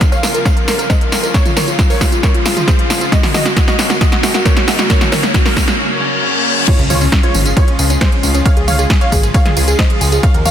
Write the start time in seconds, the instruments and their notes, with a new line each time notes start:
Already playing: riser
0.01 analog synth pad C#3 F3 A#3 F4, synth pluck A#4, kick, snare, closed hi-hat, tambourine
0.12 synth pluck C#5 F5, grand piano F5, closed hi-hat, tambourine
0.23 analog synth bass C2, analog synth pad C#3 F3 A#3 F4, synth pluck A#4, grand piano A#4, snare, open hi-hat, tambourine
0.34 synth pluck A#4, grand piano A#4, closed hi-hat, tambourine
0.45 analog synth pad C#3 F3 A#3 F4, synth pluck C#5 F5, grand piano F5, kick, snare, closed hi-hat, tambourine
0.56 analog synth pad C#3 F3 A#3 F4, synth pluck A#4, grand piano A#4, closed hi-hat
0.68 analog synth bass F1, synth pluck A#4, grand piano A#4, snare, open hi-hat, tambourine
0.79 analog synth pad C#3 F3 A#3 F4, synth pluck A#4, grand piano A#4, closed hi-hat, tambourine
0.90 synth pluck C5 D#5, grand piano D#5, kick, snare, closed hi-hat, tambourine
1.01 analog synth pad C#3 F3 A#3 F4, synth pluck A#4, grand piano A#4, closed hi-hat
1.12 analog synth bass F1, synth pluck A#4, grand piano A#4, snare, open hi-hat, tambourine
1.23 analog synth pad C#3 F3 A#3 F4, synth pluck A#4, grand piano A#4, closed hi-hat, tambourine
1.34 analog synth pad C#3 F3 G#3 F4, synth pluck A#4 C#5, grand piano C#5, kick, snare, closed hi-hat, tambourine
1.45 analog synth bass F1, synth pluck F4, grand piano F4, closed hi-hat, mid tom, tambourine
1.56 analog synth bass F1, analog synth pad C#3 F3 G#3 F4, synth pluck A#4 C#5, grand piano C#5, snare, open hi-hat, mid tom, tambourine
1.68 synth pluck F4, grand piano F4, closed hi-hat, tambourine
1.79 analog synth pad C#3 F3 G#3 F4, synth pluck F4, kick, snare, closed hi-hat, tambourine
1.90 synth pluck A#4 C#5, grand piano C#5, open hi-hat, tambourine
2.01 analog synth bass C2, analog synth pad C#3 F3 G#3 F4, synth pluck F4, grand piano F4, kick, snare, open hi-hat, tambourine
2.12 grand piano F4, synth pluck F4, closed hi-hat, tambourine
2.23 analog synth pad C#3 F3 G#3 F4, synth pluck A#4 C#5, grand piano C#5, kick, snare, closed hi-hat, tambourine
2.34 analog synth pad C#3 F3 G#3 F4, grand piano F4, synth pluck F4, closed hi-hat
2.45 analog synth bass F1, grand piano F4, synth pluck F4, snare, open hi-hat, tambourine
2.56 analog synth pad C#3 F3 G#3 F4, grand piano F4, synth pluck F4, closed hi-hat, mid tom, tambourine
2.68 synth pluck G#4 C5, grand piano C5, kick, snare, closed hi-hat, tambourine
2.79 analog synth pad C#3 F3 G#3 F4, grand piano F4, synth pluck F4, closed hi-hat
2.90 analog synth bass F1, grand piano F4, synth pluck F4, snare, open hi-hat, tambourine
3.01 analog synth pad C#3 F3 G#3 F4, grand piano F4, synth pluck F4, closed hi-hat, tambourine
3.12 analog synth pad C#3 F#3 A#3 D#4, synth pluck F#4 D#5, grand piano D#5, kick, snare, closed hi-hat, tambourine
3.23 analog synth bass F#1, grand piano F#4, synth pluck F#4, snare, open hi-hat, mid tom, tambourine
3.34 analog synth bass F#1, analog synth pad C#3 F#3 A#3 D#4, synth pluck F#4 D#5, grand piano D#5, snare, open hi-hat, mid tom, tambourine
3.45 grand piano F#4, synth pluck F#4, snare, closed hi-hat, tambourine
3.56 analog synth pad C#3 F#3 A#3 D#4, grand piano F#4, synth pluck F#4, kick, snare, closed hi-hat, tambourine
3.68 synth pluck F#4 D#5, grand piano D#5, snare, closed hi-hat, tambourine
3.79 analog synth bass C#2, analog synth pad C#3 F#3 A#3 D#4, grand piano F#4, synth pluck F#4, snare, open hi-hat, tambourine
3.90 grand piano F#4, synth pluck F#4, snare, closed hi-hat, tambourine
4.01 analog synth pad C#3 F#3 A#3 D#4, synth pluck F#4 D#5, grand piano D#5, kick, snare, closed hi-hat, tambourine
4.12 analog synth pad C#3 F#3 A#3 D#4, grand piano F#4, synth pluck F#4, snare, closed hi-hat
4.23 analog synth bass F#1, grand piano F#4, synth pluck F#4, snare, open hi-hat, tambourine
4.34 analog synth pad C#3 F#3 A#3 D#4, grand piano F#4, synth pluck F#4, snare, closed hi-hat, tambourine
4.45 synth pluck A#4 C#5, grand piano C#5, kick, snare, closed hi-hat, tambourine
4.57 analog synth pad C#3 F#3 A#3 D#4, grand piano F#4, synth pluck F#4, snare, closed hi-hat
4.68 analog synth bass F#1, grand piano F#4, synth pluck F#4, snare, open hi-hat, tambourine
4.79 analog synth pad C#3 F#3 A#3 D#4, grand piano F#4, synth pluck F#4, snare, closed hi-hat, tambourine
4.90 analog synth pad C#3 F#3 A#3 C#4, synth pluck A#4 C#5, grand piano C#5, kick, snare, closed hi-hat, tambourine
5.01 analog synth bass F#1, grand piano F#4, synth pluck F#4, snare, closed hi-hat, mid tom, tambourine
5.12 analog synth pad C#3 F#3 A#3 C#4, synth pluck A#4 C#5, grand piano C#5, snare, open hi-hat, mid tom, tambourine
5.23 grand piano F#4, synth pluck F#4, snare, closed hi-hat, tambourine
5.34 analog synth pad C#3 F#3 A#3 C#4, grand piano F#4, synth pluck F#4, kick, snare, closed hi-hat, tambourine
5.45 synth pluck F#4 A#4, grand piano A#4, snare, open hi-hat, tambourine
5.56 analog synth bass C#2, analog synth pad C#3 F#3 A#3 C#4, grand piano F#4, synth pluck F#4, kick, snare, open hi-hat, tambourine
5.68 grand piano F#4, synth pluck F#4, snare, closed hi-hat, tambourine
5.79 analog synth pad C#3 F#3 A#3 C#4, reverse cymbal
5.90 analog synth pad C#3 F#3 A#3 C#4
6.12 analog synth pad C#3 F#3 A#3 C#4
6.34 analog synth pad C#3 F#3 A#3 C#4
6.56 analog synth pad C#3 F#3 A#3 C#4
6.68 analog synth pad C#3 F3 G#3 F4, synth pluck F4 C#5, grand piano C#5, kick, closed hi-hat, crash, ride, tambourine, impact
6.79 analog synth bass C#2, grand piano C#4, synth pluck C#4, closed hi-hat
6.90 analog synth bass C#2, analog synth pad C#3 F3 G#3 F4, synth pluck F4 C#5, grand piano C#5, open hi-hat, mid tom, tambourine
7.01 grand piano C#4, synth pluck C#4, open hi-hat, tambourine
7.12 analog synth pad C#3 F3 G#3 F4, grand piano C#4, synth pluck C#4, kick, snare, closed hi-hat, ride, tambourine
7.23 synth pluck F4 C#5, grand piano C#5, closed hi-hat
7.34 analog synth bass G#1, analog synth pad C#3 F3 G#3 F4, grand piano C#4, synth pluck C#4, open hi-hat, mid tom, tambourine
7.46 grand piano C#4, synth pluck C#4, closed hi-hat, tambourine
7.57 analog synth pad C#3 F3 G#3 F4, synth pluck F4 C#5, grand piano C#5, kick, closed hi-hat, ride, tambourine
7.68 analog synth pad C#3 F3 G#3 F4, grand piano C#4, synth pluck C#4, closed hi-hat
7.79 analog synth bass C#2, grand piano C#4, synth pluck C#4, open hi-hat, tambourine
7.90 analog synth pad C#3 F3 G#3 F4, grand piano C#4, synth pluck C#4, closed hi-hat, tambourine
8.01 synth pluck G#4 C5, grand piano C5, kick, snare, closed hi-hat, ride
8.12 analog synth pad C#3 F3 G#3 F4, grand piano C#4, synth pluck C#4, closed hi-hat
8.23 analog synth bass C#2, grand piano C#4, synth pluck C#4, open hi-hat, tambourine
8.34 analog synth pad C#3 F3 G#3 F4, grand piano C#4, synth pluck C#4, closed hi-hat, tambourine
8.45 analog synth pad C#3 F3 G#3 F4, synth pluck C#5 F5, grand piano F5, kick, closed hi-hat, ride, tambourine
8.57 analog synth bass C#2, grand piano G#4, synth pluck G#4, closed hi-hat
8.68 analog synth bass C#2, analog synth pad C#3 F3 G#3 F4, synth pluck C#5 F5, grand piano F5, open hi-hat, mid tom, tambourine
8.79 grand piano G#4, synth pluck G#4, closed hi-hat, tambourine
8.90 analog synth pad C#3 F3 G#3 F4, grand piano G#4, synth pluck G#4, kick, snare, closed hi-hat, ride, tambourine
9.01 synth pluck C#5 F5, grand piano F5, closed hi-hat
9.12 analog synth bass G#1, analog synth pad C#3 F3 G#3 F4, grand piano G#4, synth pluck G#4, kick, open hi-hat, mid tom, tambourine
9.23 grand piano G#4, synth pluck G#4, closed hi-hat, tambourine
9.34 analog synth pad C#3 F3 G#3 F4, synth pluck C#5 F5, grand piano F5, kick, closed hi-hat, ride, tambourine
9.45 analog synth pad C#3 F3 G#3 F4, synth pluck G#4, grand piano G#4, snare, closed hi-hat, mid tom
9.57 analog synth bass C#2, grand piano G#4, synth pluck G#4, open hi-hat, tambourine
9.68 analog synth pad C#3 F3 G#3 F4, synth pluck G#4, grand piano G#4, closed hi-hat, tambourine
9.79 synth pluck C5 D#5, grand piano D#5, kick, snare, closed hi-hat, ride, tambourine
9.90 analog synth pad C#3 F3 G#3 F4, grand piano G#4, synth pluck G#4, closed hi-hat
10.01 analog synth bass C#2, synth pluck G#4, grand piano G#4, open hi-hat, tambourine
10.12 analog synth pad C#3 F3 G#3 F4, grand piano G#4, synth pluck G#4, closed hi-hat, tambourine
10.23 analog synth pad D#3 F#3 A#3 F#4, synth pluck C#5 F5, grand piano F5, kick, closed hi-hat, ride, tambourine
10.34 analog synth bass D#2, grand piano A#4, synth pluck A#4, closed hi-hat
10.45 analog synth bass D#2, analog synth pad D#3 F#3 A#3 F#4, synth pluck C#5 F5, grand piano F5, open hi-hat, mid tom, tambourine